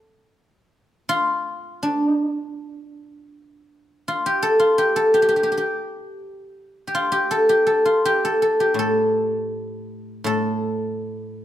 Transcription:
0, 0, Header, 1, 2, 480
1, 0, Start_track
1, 0, Tempo, 711744
1, 24, Time_signature, 2, 2, 24, 8
1, 984, Tempo, 739827
1, 2904, Tempo, 714286
1, 4824, Tempo, 750939
1, 6264, Tempo, 727273
1, 7532, End_track
2, 0, Start_track
2, 0, Title_t, "Guzheng"
2, 0, Program_c, 0, 107
2, 0, Note_on_c, 0, 69, 72
2, 0, Note_on_c, 0, 74, 70
2, 74, Note_off_c, 0, 74, 0
2, 544, Note_off_c, 0, 69, 0
2, 735, Note_on_c, 0, 65, 82
2, 1223, Note_on_c, 0, 62, 59
2, 2385, Note_off_c, 0, 65, 0
2, 2685, Note_on_c, 0, 65, 62
2, 2801, Note_on_c, 0, 67, 62
2, 2909, Note_on_c, 0, 69, 76
2, 3020, Note_off_c, 0, 65, 0
2, 3023, Note_on_c, 0, 65, 65
2, 3043, Note_off_c, 0, 62, 0
2, 3145, Note_off_c, 0, 67, 0
2, 3148, Note_on_c, 0, 67, 73
2, 3265, Note_off_c, 0, 69, 0
2, 3268, Note_on_c, 0, 69, 72
2, 3386, Note_off_c, 0, 67, 0
2, 3388, Note_on_c, 0, 67, 64
2, 3441, Note_off_c, 0, 67, 0
2, 3444, Note_on_c, 0, 67, 52
2, 3484, Note_off_c, 0, 67, 0
2, 3487, Note_on_c, 0, 67, 58
2, 3535, Note_off_c, 0, 67, 0
2, 3538, Note_on_c, 0, 67, 44
2, 3583, Note_off_c, 0, 67, 0
2, 3586, Note_on_c, 0, 67, 53
2, 3640, Note_off_c, 0, 67, 0
2, 3643, Note_on_c, 0, 67, 43
2, 3678, Note_off_c, 0, 67, 0
2, 3681, Note_on_c, 0, 67, 52
2, 4552, Note_off_c, 0, 67, 0
2, 4554, Note_on_c, 0, 67, 44
2, 4600, Note_off_c, 0, 65, 0
2, 4603, Note_on_c, 0, 65, 67
2, 4715, Note_off_c, 0, 67, 0
2, 4718, Note_on_c, 0, 67, 70
2, 4743, Note_off_c, 0, 69, 0
2, 4845, Note_on_c, 0, 69, 76
2, 4960, Note_off_c, 0, 67, 0
2, 4962, Note_on_c, 0, 67, 63
2, 5071, Note_off_c, 0, 69, 0
2, 5073, Note_on_c, 0, 69, 68
2, 5192, Note_off_c, 0, 65, 0
2, 5194, Note_on_c, 0, 65, 58
2, 5319, Note_off_c, 0, 67, 0
2, 5322, Note_on_c, 0, 67, 77
2, 5443, Note_off_c, 0, 69, 0
2, 5445, Note_on_c, 0, 69, 64
2, 5554, Note_off_c, 0, 69, 0
2, 5556, Note_on_c, 0, 69, 57
2, 5669, Note_off_c, 0, 67, 0
2, 5671, Note_on_c, 0, 67, 56
2, 5762, Note_on_c, 0, 45, 42
2, 5789, Note_off_c, 0, 69, 0
2, 5792, Note_on_c, 0, 69, 75
2, 6728, Note_off_c, 0, 45, 0
2, 6735, Note_on_c, 0, 45, 46
2, 6747, Note_off_c, 0, 69, 0
2, 6750, Note_on_c, 0, 69, 65
2, 6828, Note_off_c, 0, 65, 0
2, 7207, Note_off_c, 0, 67, 0
2, 7532, Note_off_c, 0, 45, 0
2, 7532, Note_off_c, 0, 69, 0
2, 7532, End_track
0, 0, End_of_file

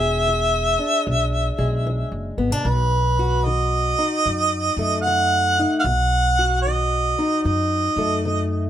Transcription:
0, 0, Header, 1, 4, 480
1, 0, Start_track
1, 0, Tempo, 797872
1, 1600, Time_signature, 4, 2, 24, 8
1, 5233, End_track
2, 0, Start_track
2, 0, Title_t, "Harmonica"
2, 0, Program_c, 0, 22
2, 0, Note_on_c, 0, 76, 102
2, 1411, Note_off_c, 0, 76, 0
2, 1594, Note_on_c, 0, 71, 89
2, 2076, Note_on_c, 0, 75, 104
2, 2085, Note_off_c, 0, 71, 0
2, 3014, Note_off_c, 0, 75, 0
2, 3017, Note_on_c, 0, 78, 109
2, 3456, Note_off_c, 0, 78, 0
2, 3488, Note_on_c, 0, 77, 75
2, 3489, Note_on_c, 0, 78, 106
2, 3498, Note_off_c, 0, 77, 0
2, 3978, Note_off_c, 0, 78, 0
2, 3982, Note_on_c, 0, 75, 98
2, 4448, Note_off_c, 0, 75, 0
2, 4469, Note_on_c, 0, 75, 93
2, 5233, Note_off_c, 0, 75, 0
2, 5233, End_track
3, 0, Start_track
3, 0, Title_t, "Steel-string acoustic guitar"
3, 0, Program_c, 1, 25
3, 0, Note_on_c, 1, 40, 72
3, 0, Note_on_c, 1, 68, 65
3, 128, Note_off_c, 1, 40, 0
3, 163, Note_on_c, 1, 52, 62
3, 474, Note_on_c, 1, 62, 52
3, 608, Note_off_c, 1, 52, 0
3, 641, Note_on_c, 1, 47, 62
3, 953, Note_on_c, 1, 56, 53
3, 1087, Note_off_c, 1, 47, 0
3, 1123, Note_on_c, 1, 52, 58
3, 1429, Note_off_c, 1, 62, 0
3, 1432, Note_on_c, 1, 59, 57
3, 1516, Note_off_c, 1, 59, 0
3, 1516, Note_on_c, 1, 62, 44
3, 1568, Note_off_c, 1, 52, 0
3, 1580, Note_off_c, 1, 56, 0
3, 1581, Note_off_c, 1, 68, 0
3, 1599, Note_on_c, 1, 47, 74
3, 1600, Note_off_c, 1, 62, 0
3, 1919, Note_on_c, 1, 66, 67
3, 2046, Note_off_c, 1, 47, 0
3, 2084, Note_on_c, 1, 51, 66
3, 2396, Note_on_c, 1, 63, 52
3, 2529, Note_off_c, 1, 51, 0
3, 2563, Note_on_c, 1, 42, 62
3, 2880, Note_on_c, 1, 57, 57
3, 3008, Note_off_c, 1, 42, 0
3, 3049, Note_on_c, 1, 51, 64
3, 3355, Note_off_c, 1, 63, 0
3, 3365, Note_on_c, 1, 63, 59
3, 3492, Note_off_c, 1, 51, 0
3, 3504, Note_off_c, 1, 66, 0
3, 3506, Note_off_c, 1, 63, 0
3, 3528, Note_on_c, 1, 47, 73
3, 3546, Note_off_c, 1, 57, 0
3, 3843, Note_on_c, 1, 66, 63
3, 3971, Note_off_c, 1, 47, 0
3, 4010, Note_on_c, 1, 51, 61
3, 4322, Note_on_c, 1, 63, 57
3, 4453, Note_off_c, 1, 51, 0
3, 4484, Note_on_c, 1, 42, 64
3, 4803, Note_on_c, 1, 57, 54
3, 4930, Note_off_c, 1, 42, 0
3, 4965, Note_on_c, 1, 51, 64
3, 5233, Note_off_c, 1, 51, 0
3, 5233, Note_off_c, 1, 57, 0
3, 5233, Note_off_c, 1, 63, 0
3, 5233, Note_off_c, 1, 66, 0
3, 5233, End_track
4, 0, Start_track
4, 0, Title_t, "Upright bass"
4, 0, Program_c, 2, 32
4, 0, Note_on_c, 2, 28, 106
4, 451, Note_off_c, 2, 28, 0
4, 642, Note_on_c, 2, 35, 87
4, 892, Note_off_c, 2, 35, 0
4, 953, Note_on_c, 2, 35, 90
4, 1212, Note_off_c, 2, 35, 0
4, 1273, Note_on_c, 2, 30, 77
4, 1415, Note_off_c, 2, 30, 0
4, 1429, Note_on_c, 2, 32, 73
4, 1503, Note_off_c, 2, 32, 0
4, 1507, Note_on_c, 2, 35, 75
4, 1586, Note_off_c, 2, 35, 0
4, 1593, Note_on_c, 2, 35, 103
4, 2364, Note_off_c, 2, 35, 0
4, 2561, Note_on_c, 2, 42, 87
4, 2811, Note_off_c, 2, 42, 0
4, 2868, Note_on_c, 2, 42, 91
4, 3388, Note_off_c, 2, 42, 0
4, 3516, Note_on_c, 2, 35, 103
4, 4286, Note_off_c, 2, 35, 0
4, 4482, Note_on_c, 2, 42, 88
4, 4732, Note_off_c, 2, 42, 0
4, 4791, Note_on_c, 2, 42, 93
4, 5233, Note_off_c, 2, 42, 0
4, 5233, End_track
0, 0, End_of_file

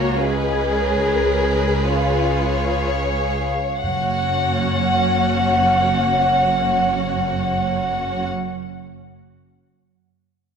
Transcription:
0, 0, Header, 1, 8, 480
1, 0, Start_track
1, 0, Key_signature, 6, "major"
1, 0, Tempo, 1048951
1, 588, Tempo, 1202405
1, 1068, Tempo, 1348315
1, 1547, Time_signature, 12, 3, 24, 8
1, 1548, Tempo, 1268499
1, 4093, End_track
2, 0, Start_track
2, 0, Title_t, "Flute section"
2, 0, Program_c, 0, 73
2, 0, Note_on_c, 0, 77, 57
2, 103, Note_off_c, 0, 77, 0
2, 108, Note_on_c, 0, 75, 50
2, 340, Note_off_c, 0, 75, 0
2, 340, Note_on_c, 0, 73, 51
2, 821, Note_on_c, 0, 77, 59
2, 822, Note_off_c, 0, 73, 0
2, 1533, Note_off_c, 0, 77, 0
2, 1545, Note_on_c, 0, 78, 52
2, 3228, Note_off_c, 0, 78, 0
2, 4093, End_track
3, 0, Start_track
3, 0, Title_t, "Violin section"
3, 0, Program_c, 1, 48
3, 0, Note_on_c, 1, 73, 54
3, 83, Note_on_c, 1, 71, 46
3, 96, Note_off_c, 1, 73, 0
3, 325, Note_on_c, 1, 70, 53
3, 327, Note_off_c, 1, 71, 0
3, 806, Note_off_c, 1, 70, 0
3, 816, Note_on_c, 1, 73, 55
3, 1545, Note_off_c, 1, 73, 0
3, 1545, Note_on_c, 1, 78, 46
3, 3227, Note_off_c, 1, 78, 0
3, 4093, End_track
4, 0, Start_track
4, 0, Title_t, "Violin section"
4, 0, Program_c, 2, 48
4, 0, Note_on_c, 2, 66, 50
4, 0, Note_on_c, 2, 70, 46
4, 101, Note_off_c, 2, 66, 0
4, 101, Note_off_c, 2, 70, 0
4, 104, Note_on_c, 2, 68, 47
4, 105, Note_on_c, 2, 71, 45
4, 1415, Note_off_c, 2, 68, 0
4, 1430, Note_off_c, 2, 71, 0
4, 1547, Note_on_c, 2, 66, 39
4, 1547, Note_on_c, 2, 73, 42
4, 3230, Note_off_c, 2, 66, 0
4, 3230, Note_off_c, 2, 73, 0
4, 4093, End_track
5, 0, Start_track
5, 0, Title_t, "Cello section"
5, 0, Program_c, 3, 48
5, 0, Note_on_c, 3, 66, 48
5, 99, Note_off_c, 3, 66, 0
5, 100, Note_on_c, 3, 68, 46
5, 820, Note_off_c, 3, 68, 0
5, 820, Note_on_c, 3, 65, 42
5, 1178, Note_off_c, 3, 65, 0
5, 1548, Note_on_c, 3, 42, 47
5, 3230, Note_off_c, 3, 42, 0
5, 4093, End_track
6, 0, Start_track
6, 0, Title_t, "Viola section"
6, 0, Program_c, 4, 48
6, 0, Note_on_c, 4, 58, 54
6, 0, Note_on_c, 4, 61, 50
6, 84, Note_off_c, 4, 58, 0
6, 103, Note_on_c, 4, 56, 49
6, 1414, Note_off_c, 4, 61, 0
6, 1429, Note_off_c, 4, 56, 0
6, 1545, Note_on_c, 4, 61, 47
6, 1546, Note_on_c, 4, 58, 43
6, 3228, Note_off_c, 4, 58, 0
6, 3228, Note_off_c, 4, 61, 0
6, 4093, End_track
7, 0, Start_track
7, 0, Title_t, "Timpani"
7, 0, Program_c, 5, 47
7, 1548, Note_on_c, 5, 42, 33
7, 3231, Note_off_c, 5, 42, 0
7, 4093, End_track
8, 0, Start_track
8, 0, Title_t, "Double bass section"
8, 0, Program_c, 6, 48
8, 0, Note_on_c, 6, 37, 53
8, 1413, Note_off_c, 6, 37, 0
8, 1548, Note_on_c, 6, 30, 44
8, 3231, Note_off_c, 6, 30, 0
8, 4093, End_track
0, 0, End_of_file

